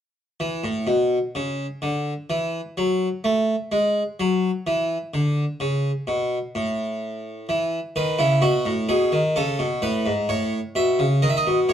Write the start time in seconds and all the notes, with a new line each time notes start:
0.40 E3
0.64 A2
0.87 B2
1.35 C#3
1.82 D3
2.30 E3
2.77 F#3
3.24 A3
3.72 G#3
4.20 F#3
4.67 E3
5.14 D3
5.60 C#3
6.07 B2
6.55 A2
7.49 E3
7.96 D#3 B4
8.19 C#3 E4
8.42 B2 F#4
8.65 A2
8.89 B2 G#4
9.12 D#3
9.36 C#3 A4
9.59 B2
9.82 A2 B4
10.06 G#2
10.29 A2 C#5
10.75 B2 E5
10.99 C#3
11.22 D#3 D#5
11.30 E5
11.37 D#5
11.47 B2
11.69 A2 C#5